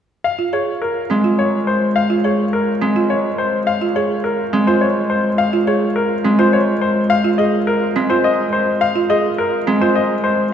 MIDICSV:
0, 0, Header, 1, 4, 480
1, 0, Start_track
1, 0, Key_signature, -5, "minor"
1, 0, Tempo, 571429
1, 203, Time_signature, 3, 2, 24, 8
1, 8847, End_track
2, 0, Start_track
2, 0, Title_t, "Grand piano"
2, 0, Program_c, 0, 0
2, 205, Note_on_c, 0, 77, 61
2, 360, Note_off_c, 0, 77, 0
2, 446, Note_on_c, 0, 73, 49
2, 600, Note_off_c, 0, 73, 0
2, 685, Note_on_c, 0, 70, 46
2, 840, Note_off_c, 0, 70, 0
2, 1165, Note_on_c, 0, 73, 52
2, 1320, Note_off_c, 0, 73, 0
2, 1404, Note_on_c, 0, 72, 55
2, 1560, Note_off_c, 0, 72, 0
2, 1643, Note_on_c, 0, 77, 62
2, 1799, Note_off_c, 0, 77, 0
2, 1886, Note_on_c, 0, 73, 49
2, 2040, Note_off_c, 0, 73, 0
2, 2126, Note_on_c, 0, 70, 52
2, 2280, Note_off_c, 0, 70, 0
2, 2604, Note_on_c, 0, 73, 52
2, 2759, Note_off_c, 0, 73, 0
2, 2842, Note_on_c, 0, 72, 55
2, 2999, Note_off_c, 0, 72, 0
2, 3081, Note_on_c, 0, 77, 63
2, 3238, Note_off_c, 0, 77, 0
2, 3324, Note_on_c, 0, 73, 49
2, 3479, Note_off_c, 0, 73, 0
2, 3561, Note_on_c, 0, 70, 52
2, 3718, Note_off_c, 0, 70, 0
2, 3924, Note_on_c, 0, 72, 53
2, 4042, Note_on_c, 0, 73, 54
2, 4079, Note_off_c, 0, 72, 0
2, 4199, Note_off_c, 0, 73, 0
2, 4282, Note_on_c, 0, 72, 54
2, 4439, Note_off_c, 0, 72, 0
2, 4520, Note_on_c, 0, 77, 67
2, 4678, Note_off_c, 0, 77, 0
2, 4766, Note_on_c, 0, 73, 53
2, 4920, Note_off_c, 0, 73, 0
2, 5004, Note_on_c, 0, 70, 52
2, 5160, Note_off_c, 0, 70, 0
2, 5368, Note_on_c, 0, 72, 58
2, 5485, Note_on_c, 0, 73, 55
2, 5521, Note_off_c, 0, 72, 0
2, 5640, Note_off_c, 0, 73, 0
2, 5725, Note_on_c, 0, 72, 56
2, 5880, Note_off_c, 0, 72, 0
2, 5962, Note_on_c, 0, 77, 75
2, 6119, Note_off_c, 0, 77, 0
2, 6199, Note_on_c, 0, 75, 53
2, 6358, Note_off_c, 0, 75, 0
2, 6444, Note_on_c, 0, 70, 58
2, 6599, Note_off_c, 0, 70, 0
2, 6800, Note_on_c, 0, 72, 61
2, 6924, Note_on_c, 0, 75, 55
2, 6958, Note_off_c, 0, 72, 0
2, 7080, Note_off_c, 0, 75, 0
2, 7163, Note_on_c, 0, 72, 58
2, 7319, Note_off_c, 0, 72, 0
2, 7400, Note_on_c, 0, 77, 75
2, 7558, Note_off_c, 0, 77, 0
2, 7642, Note_on_c, 0, 75, 60
2, 7799, Note_off_c, 0, 75, 0
2, 7883, Note_on_c, 0, 70, 56
2, 8039, Note_off_c, 0, 70, 0
2, 8243, Note_on_c, 0, 72, 55
2, 8362, Note_on_c, 0, 75, 55
2, 8399, Note_off_c, 0, 72, 0
2, 8519, Note_off_c, 0, 75, 0
2, 8599, Note_on_c, 0, 72, 57
2, 8758, Note_off_c, 0, 72, 0
2, 8847, End_track
3, 0, Start_track
3, 0, Title_t, "Marimba"
3, 0, Program_c, 1, 12
3, 325, Note_on_c, 1, 65, 50
3, 445, Note_on_c, 1, 68, 50
3, 480, Note_off_c, 1, 65, 0
3, 600, Note_off_c, 1, 68, 0
3, 924, Note_on_c, 1, 60, 59
3, 1044, Note_on_c, 1, 65, 51
3, 1079, Note_off_c, 1, 60, 0
3, 1199, Note_off_c, 1, 65, 0
3, 1764, Note_on_c, 1, 65, 53
3, 1885, Note_on_c, 1, 68, 49
3, 1920, Note_off_c, 1, 65, 0
3, 2040, Note_off_c, 1, 68, 0
3, 2365, Note_on_c, 1, 60, 61
3, 2487, Note_on_c, 1, 65, 52
3, 2520, Note_off_c, 1, 60, 0
3, 2641, Note_off_c, 1, 65, 0
3, 3205, Note_on_c, 1, 65, 51
3, 3326, Note_on_c, 1, 68, 53
3, 3360, Note_off_c, 1, 65, 0
3, 3480, Note_off_c, 1, 68, 0
3, 3806, Note_on_c, 1, 60, 63
3, 3928, Note_on_c, 1, 65, 54
3, 3960, Note_off_c, 1, 60, 0
3, 4081, Note_off_c, 1, 65, 0
3, 4648, Note_on_c, 1, 65, 55
3, 4767, Note_on_c, 1, 68, 55
3, 4801, Note_off_c, 1, 65, 0
3, 4920, Note_off_c, 1, 68, 0
3, 5246, Note_on_c, 1, 60, 64
3, 5366, Note_on_c, 1, 65, 57
3, 5400, Note_off_c, 1, 60, 0
3, 5520, Note_off_c, 1, 65, 0
3, 6086, Note_on_c, 1, 65, 55
3, 6206, Note_on_c, 1, 68, 55
3, 6240, Note_off_c, 1, 65, 0
3, 6360, Note_off_c, 1, 68, 0
3, 6686, Note_on_c, 1, 60, 68
3, 6806, Note_on_c, 1, 65, 56
3, 6840, Note_off_c, 1, 60, 0
3, 6960, Note_off_c, 1, 65, 0
3, 7523, Note_on_c, 1, 65, 54
3, 7644, Note_on_c, 1, 68, 60
3, 7679, Note_off_c, 1, 65, 0
3, 7800, Note_off_c, 1, 68, 0
3, 8124, Note_on_c, 1, 60, 67
3, 8246, Note_on_c, 1, 65, 53
3, 8280, Note_off_c, 1, 60, 0
3, 8400, Note_off_c, 1, 65, 0
3, 8847, End_track
4, 0, Start_track
4, 0, Title_t, "Harp"
4, 0, Program_c, 2, 46
4, 928, Note_on_c, 2, 56, 65
4, 2355, Note_off_c, 2, 56, 0
4, 2365, Note_on_c, 2, 56, 68
4, 3795, Note_off_c, 2, 56, 0
4, 3805, Note_on_c, 2, 56, 71
4, 5237, Note_off_c, 2, 56, 0
4, 5247, Note_on_c, 2, 56, 69
4, 6673, Note_off_c, 2, 56, 0
4, 6684, Note_on_c, 2, 56, 69
4, 8114, Note_off_c, 2, 56, 0
4, 8124, Note_on_c, 2, 56, 76
4, 8847, Note_off_c, 2, 56, 0
4, 8847, End_track
0, 0, End_of_file